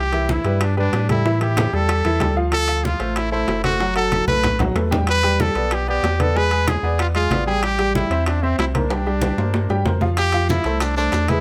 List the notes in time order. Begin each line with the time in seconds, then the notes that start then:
Already playing: C2
0.00 G4
0.12 E3 E4 E5, high bongo, high conga, high timbale
0.29 E4, high bongo, high conga, low timbale
0.44 G2 G3 G4 B4, high bongo, high conga, high timbale
0.61 D4, high bongo, high conga, high timbale
0.77 G3 D4 G4 B4, high conga
0.93 A2, high bongo, low bongo, high conga, high timbale, low timbale
1.09 G3 E4 G4 A4, high bongo, high conga, high timbale
1.25 E3 E4 E5, high bongo, high conga
1.41 E3 E4 G4 E5, high conga, high timbale
1.57 high bongo, high conga, high timbale, low timbale
1.73 E2 G3 G4 A4, high bongo, high conga
1.89 high bongo, high timbale
2.05 E2 E3 E4 E5, high bongo, high conga, high timbale
2.20 D2 G3 G4 A4, high bongo, low bongo, high conga, high timbale, low timbale
2.36 F3 F4 F5, high bongo
2.52 A4, high bongo, high conga, high timbale
2.68 F3 F4 F5, high bongo, high conga, high timbale
2.84 F4, high bongo, high conga, low timbale
2.99 A1 A3 A4 C5, high bongo, high conga, high timbale
3.16 E4, high bongo, high conga, high timbale
3.31 A3 E4 A4 C5, high conga
3.48 F#1, high bongo, low bongo, high conga, high timbale, low timbale
3.63 A3 F#4 A4 C5, high bongo, high conga, high timbale
3.80 F#3 F#4 F#5, high bongo, high conga
3.96 F#3 F#4 A4 F#5, high conga, high timbale
4.12 high bongo, high conga, high timbale, low timbale
4.27 B1 A3 A4 B4, high bongo, high conga
4.44 high bongo, low conga, high timbale
4.59 F#3 F#4 F#5, high bongo, low conga, high timbale
4.75 E2 A3 A4 B4, high bongo, low bongo, high timbale, low timbale
4.91 G3 G4 G5, high bongo, low conga
5.07 B4, high bongo, high conga, high timbale
5.23 G3 G4 G5, high bongo, high conga, high timbale
5.39 A4, high bongo, high conga, low timbale
5.55 B1 B3 B4 D5, high bongo, high conga, high timbale
5.71 G4, high bongo, high conga, high timbale
5.88 B3 G4 B4 D5, high conga
6.03 E2, high bongo, low bongo, high conga, high timbale, low timbale
6.19 B3 A4 B4 D5, high bongo, high conga, high timbale
6.35 G#3 G#4 B4 G#5, high bongo, high conga
6.51 G#3 G#4 G#5, high conga, high timbale
6.68 G#4, high bongo, high conga, high timbale, low timbale
6.83 E2 B3 B4 D5, high bongo, high conga
6.99 F4, high bongo, high conga, high timbale
7.15 G#3 F4 G#4 G#5, high bongo, high conga, high timbale
7.30 A1 B3 B4 D5, high bongo, low bongo, high conga, high timbale, low timbale
7.46 G3 G4 G#4 G5, high bongo
7.63 G4, high bongo, high conga, high timbale
7.78 G3 G4 G5, high bongo, high conga, high timbale
7.95 E4, high bongo, high conga, low timbale
8.10 E2 C4 C5 E5, high bongo, high conga, high timbale
8.26 D4, high bongo, high conga, high timbale
8.43 C4 C5 E5, high conga
8.58 C2 E4, high bongo, low bongo, high conga, high timbale, low timbale
8.74 A#3 D4 A#4 C5, high bongo, high conga, high timbale
8.90 G3 G4 G5, high bongo, high timbale
9.06 G3 G4 G5, high conga
9.22 high bongo, high conga, high timbale
9.38 G2 A#3 A#4 C5, high bongo, high conga, low timbale
9.54 high bongo, high conga, low timbale
9.69 G2 G3 G4 G5, high bongo, high conga, low timbale
9.85 F2 A#3 A#4 C5, high bongo, low bongo, high conga, low timbale
10.01 F3 F4 F5, high bongo, high conga, low timbale
10.17 G4, high bongo, high conga, high timbale, maracas
10.32 F3 F4 F5, high bongo, high conga, high timbale
10.49 E4, high bongo, high conga, low timbale, maracas
10.64 C2 A3 A4 C5, high bongo, high conga, high timbale, maracas
10.80 D4, high bongo, high conga, high timbale, maracas
10.96 A3 D4 A4 C5, high conga, maracas
11.12 E2, high bongo, low bongo, high conga, high timbale, low timbale, maracas
11.28 G#3 E4 G#4 B4, high bongo, high conga, high timbale, maracas